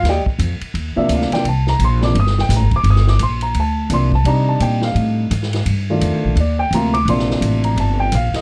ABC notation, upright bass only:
X:1
M:4/4
L:1/8
Q:"Swing" 1/4=171
K:Cdor
V:1 name="Upright bass" clef=bass
E,, z F,, z E,, z D,, z | C,,2 B,,,2 G,,,2 (3A,,, G,,, E,,, | G,,,2 B,,,2 D,,2 C,,2 | C,2 B,,2 A,,2 _A,,2 |
G,,2 (3F,, D,, B,,, E,,2 D,,2 | B,,,2 A,,,2 G,,,2 B,,, z |]